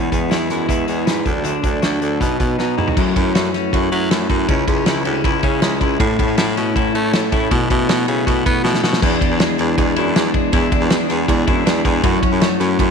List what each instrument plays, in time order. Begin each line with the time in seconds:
Already playing: clean electric guitar E2 E3 G#3 B3
0.11 baritone saxophone E2, clean electric guitar G#3 B3 E4, kick, closed hi-hat
0.30 baritone saxophone E2, clean electric guitar E3 G#3 B3 E4, snare, closed hi-hat
0.49 baritone saxophone F#2, clean electric guitar G#3 B3 E4, snare, closed hi-hat
0.68 baritone saxophone E2, clean electric guitar E3 G#3 B3 E4, kick, closed hi-hat
0.87 baritone saxophone E2, clean electric guitar G#3 B3 E4, closed hi-hat
1.07 baritone saxophone G#2, clean electric guitar E3 G#3 B3 E4, snare, closed hi-hat
1.25 baritone saxophone D2, clean electric guitar D3 F#3 A3 D4, kick, closed hi-hat
1.45 clean electric guitar D3 F#3 A3 D4, closed hi-hat
1.64 baritone saxophone D2, clean electric guitar F#3 A3 D4, kick, closed hi-hat
1.82 baritone saxophone D2, clean electric guitar D3 F#3 A3 D4 F#4, snare, closed hi-hat
2.02 baritone saxophone D2, clean electric guitar F#3 A3 D4, closed hi-hat
2.21 baritone saxophone B2, clean electric guitar B2 F#3 B3 D#4, kick, closed hi-hat
2.39 baritone saxophone B2, clean electric guitar F#3 B3 D#4, kick, closed hi-hat
2.58 clean electric guitar B2 F#3 B3 D#4, baritone saxophone B2, snare
2.77 baritone saxophone E2, clean electric guitar F#3 B3 D#4 E4, mid tom
2.88 clean electric guitar F#4, floor tom
2.97 clean electric guitar F#2 C#3 E3 A3 E4, baritone saxophone F#2, kick, crash
3.15 baritone saxophone F#2, clean electric guitar E3 A3 C#4 E4, kick, ride
3.34 clean electric guitar F#2 C#3 E3 A3 E4 F#4, baritone saxophone F#2, snare, ride
3.53 clean electric guitar E3 A3 C#4 E4, snare, ride
3.72 baritone saxophone F#2, clean electric guitar C#3 E3 A3 E4 F#4, kick, ride
3.91 clean electric guitar E3 A3 C#4 E4, baritone saxophone F#3, ride
4.10 clean electric guitar F#2 C#3 E3 A3 E4, baritone saxophone F#2, snare, ride
4.29 baritone saxophone F#2, clean electric guitar E3 A3 E4 F#4, kick, ride
4.49 baritone saxophone C#2, clean electric guitar C#3 G#3 C#4 E4, kick, ride
4.67 baritone saxophone C#2, clean electric guitar G#3 B3 C#4 E4, kick, ride
4.77 clean electric guitar C#4
4.86 baritone saxophone C#2, clean electric guitar C#3 G#3 C#4 E4, snare, ride
5.04 baritone saxophone D2, clean electric guitar G#3 B3 C#4 E4, ride
5.15 clean electric guitar C#4
5.24 baritone saxophone C#2, clean electric guitar C#3 G#3 C#4 E4, kick, ride
5.43 baritone saxophone C#3, clean electric guitar G#3 C#4 E4, kick, ride
5.61 baritone saxophone C#2, clean electric guitar C#3 G#3 C#4 E4, snare, ride
5.80 baritone saxophone C#2, clean electric guitar G#3 C#4 E4, kick, ride
5.99 clean electric guitar A2 E3 A3 C#4 E4, baritone saxophone A2, kick, ride
6.18 baritone saxophone A2, clean electric guitar A3 B3 C#4 E4, kick, ride
6.28 clean electric guitar C#4
6.37 clean electric guitar A2 E3 A3 C#4 E4, baritone saxophone A2, snare, ride
6.55 baritone saxophone B2, clean electric guitar A3 C#4 E4, snare, ride
6.75 baritone saxophone A2, clean electric guitar E3 A3 C#4 E4, kick, ride
6.94 baritone saxophone A3, clean electric guitar A3 C#4 E4, ride
7.13 clean electric guitar A2 E3 A3 C#4 E4, baritone saxophone A2, snare, ride
7.32 baritone saxophone A2, clean electric guitar A3 C#4 E4, kick, ride
7.51 clean electric guitar B2 F#3 A3 E4, baritone saxophone B2, kick, ride
7.70 baritone saxophone B2, clean electric guitar F#3 A3 B3 E4, kick, ride
7.88 clean electric guitar B2 F#3 A3 E4 F#4, baritone saxophone B2, snare, ride
8.07 baritone saxophone C#3, clean electric guitar F#3 A3 B3 E4, ride
8.26 clean electric guitar B2 F#3 A3 E4 F#4, baritone saxophone B2, kick, ride
8.45 clean electric guitar F#3 A3 B3 E4, baritone saxophone B3, kick, ride
8.63 clean electric guitar B2 F#3 A3 E4, baritone saxophone B2, snare
8.74 snare
8.82 baritone saxophone B2, clean electric guitar F#3 A3 E4 F#4, snare
8.93 snare
9.02 clean electric guitar E2 E3 B3 D4 E4 G#4, baritone saxophone E2, kick, crash
9.21 clean electric guitar B3 D4 G#4, kick, ride
9.31 baritone saxophone E2
9.39 clean electric guitar E3 G#3 B3 D4 G#4, snare, ride
9.58 baritone saxophone E2, clean electric guitar B3 D4 G#4, ride
9.77 baritone saxophone E2, clean electric guitar E3 G#3 B3 D4 G#4, kick, ride
9.96 baritone saxophone F#2, clean electric guitar B3 D4 E4 G#4, ride
10.15 baritone saxophone E2, clean electric guitar E3 B3 D4 G#4, snare, ride
10.34 clean electric guitar G#3 B3 D4 G#4, kick, ride
10.52 baritone saxophone E2, clean electric guitar E2 E3 B3 D4 E4 G#4, kick, ride
10.71 clean electric guitar B3 D4 G#4, kick, ride
10.81 baritone saxophone E2
10.90 clean electric guitar E3 G#3 B3 D4 G#4, snare, ride
11.09 baritone saxophone E2, clean electric guitar B3 D4 G#4, snare, ride
11.27 baritone saxophone E2, clean electric guitar E3 G#3 B3 D4 G#4, kick, ride
11.46 baritone saxophone F#2, clean electric guitar B3 D4 E4 G#4, kick, ride
11.65 baritone saxophone E2, clean electric guitar E3 B3 D4 G#4, snare, ride
11.84 baritone saxophone E2, clean electric guitar G#3 B3 D4 G#4, kick, ride
12.03 clean electric guitar F#2 F#3 A3 E4 F#4 C#5, baritone saxophone F#2, kick, ride
12.22 clean electric guitar C#4 E4 F#4 C#5, kick, ride
12.32 baritone saxophone F#2
12.41 clean electric guitar F#3 A3 E4 F#4 C#5, snare, ride
12.59 baritone saxophone F#2, clean electric guitar C#4 E4 F#4 C#5, snare, ride
12.78 baritone saxophone F#2, clean electric guitar A3 E4 F#4 C#5, kick, ride